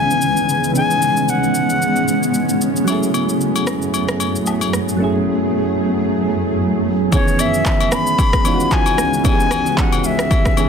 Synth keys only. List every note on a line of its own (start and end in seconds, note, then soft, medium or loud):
0.00 0.72 D#3 medium
0.00 0.71 E3 medium
0.00 0.70 B3 medium
0.00 0.71 C#4 medium
0.00 0.73 G#4 medium
0.72 2.82 E3 medium
0.72 2.83 B3 medium
0.72 2.84 C#4 medium
0.77 2.85 D#4 medium
0.77 2.85 G#4 medium
2.84 4.94 F#3 medium
2.84 2.94 G#3 medium
2.84 4.96 C#4 medium
2.90 4.97 A3 medium
2.90 4.97 E4 medium
2.90 4.98 G#4 medium
4.97 7.07 F#3 medium
4.97 7.08 A3 medium
4.97 7.09 C#4 medium
5.02 7.09 E4 medium
5.02 7.10 G#4 medium
7.11 7.99 D#3 medium
7.11 7.97 E3 medium
7.11 7.98 B3 medium
7.11 7.98 C#4 medium
7.11 7.99 G#4 medium
8.44 9.09 E3 medium
8.44 9.10 B3 medium
8.44 9.10 C#4 medium
8.44 9.11 D#4 medium
8.44 8.53 F4 medium
8.54 9.14 F#4 medium
9.23 10.10 E3 medium
9.23 10.10 B3 medium
9.23 10.10 C#4 medium
9.23 10.11 D#4 medium
9.23 9.33 G4 medium
9.33 10.15 G#4 medium
10.56 10.69 D#3 medium
10.56 10.69 E3 medium
10.56 10.69 B3 medium
10.56 10.69 C#4 medium
10.56 10.69 G#4 medium